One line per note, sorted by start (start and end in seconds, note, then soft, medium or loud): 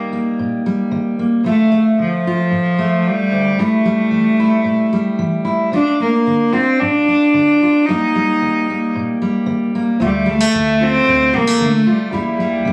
0.00 0.33 D#3 medium
0.00 0.65 G3 soft
0.00 0.11 A#3 medium
0.00 0.12 A#3 soft
0.00 1.43 D#4 medium
0.13 1.18 A#3 soft
0.39 0.87 A#2 soft
0.66 1.46 G3 soft
0.91 1.40 D#3 medium
1.19 1.42 A#3 soft
1.44 1.93 D2 medium
1.44 1.95 A3 medium
1.44 1.71 A3 medium
1.44 2.26 F4 medium
1.72 2.77 A3 medium
1.99 2.47 D3 medium
1.99 3.09 F3 medium
2.27 3.57 F4 medium
2.51 3.00 A2 medium
2.79 3.56 A3 soft
3.07 3.63 G3 medium
3.32 3.58 D2 soft
3.58 4.07 E2 medium
3.58 3.84 G3 soft
3.58 5.48 A3 medium
3.58 4.38 E4 medium
3.85 4.92 G3 soft
4.11 4.60 E3 soft
4.40 5.43 E4 medium
4.64 5.14 A#2 medium
4.93 5.73 G3 medium
5.19 5.68 E3 medium
5.45 5.69 E4 soft
5.72 6.21 D2 medium
5.72 5.99 D4 medium
5.72 6.52 F4 medium
6.00 6.54 A#3 medium
6.00 7.07 D4 soft
6.27 6.75 D3 soft
6.53 6.81 C4 medium
6.53 7.60 F4 medium
6.80 7.29 A2 medium
6.80 7.87 D4 medium
7.08 7.85 D4 soft
7.34 7.82 D3 medium
7.62 7.85 F4 soft
7.85 8.36 D#2 medium
7.85 8.14 G3 medium
7.85 8.93 D#4 medium
7.90 8.69 A#3 medium
7.90 10.00 D#4 medium
8.15 9.20 G3 medium
8.42 8.90 D#3 medium
8.70 9.74 A#3 medium
8.95 9.43 A#2 medium
9.22 10.01 G3 soft
9.46 9.95 D#3 medium
9.75 9.98 A#3 soft
10.00 10.48 D2 medium
10.00 10.42 D2 medium
10.00 10.31 G3 medium
10.00 10.25 A3 medium
10.00 10.80 F4 medium
10.26 10.40 G3 medium
10.26 10.84 A3 medium
10.40 11.32 A3 soft
10.54 10.96 D2 medium
10.54 11.02 D3 medium
10.81 11.37 C4 medium
10.81 11.85 F4 medium
11.06 11.29 D2 medium
11.06 11.55 A2 soft
11.33 11.55 A1 medium
11.33 11.47 G3 soft
11.33 11.64 A#3 medium
11.47 12.12 A3 soft
11.59 12.08 D3 medium
11.59 11.81 D3 medium
11.59 11.92 A3 medium
11.87 12.73 G3 medium
11.87 12.11 F4 medium
12.11 12.60 E2 medium
12.11 12.55 E2 medium
12.11 12.39 G3 medium
12.11 12.73 A#3 soft
12.11 12.73 E4 medium
12.40 12.73 G3 medium
12.65 12.73 E2 medium
12.65 12.73 E3 soft